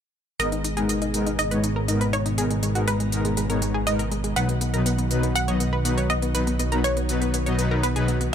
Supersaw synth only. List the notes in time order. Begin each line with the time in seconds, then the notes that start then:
0.40 G#2 G#3 B3 D#4 A#4
0.77 G#2 G#3 B3 D#4 A#4
1.14 G#2 G#3 B3 D#4 A#4
1.51 G#2 G#3 B3 D#4 C#5
1.88 G#2 G#3 B3 D#4 A#4
2.38 G#2 G#3 B3 D#4 A#4
2.75 G#2 G#3 B3 D#4 A#4
3.12 G#2 G#3 B3 D#4 A#4
3.50 G#2 G#3 B3 D#4 C#5
3.87 G#2 G#3 B3 D#4 A#4
4.36 B2 F#3 B3 D#4 B4
4.74 B2 F#3 B3 D#4 B4
5.11 B2 F#3 B3 D#4 B4
5.48 B2 F#3 B3 D#4 D#5
5.85 B2 F#3 B3 D#4 B4
6.35 B2 F#3 B3 D#4 B4
6.72 B2 F#3 B3 D#4 B4
7.09 B2 F#3 B3 D#4 B4
7.46 B2 F#3 B3 D#4 D#5
7.59 B2 F#3 B3 D#4 B4
7.71 B2 F#3 B3 D#4 B4
7.96 B2 F#3 B3 D#4 B4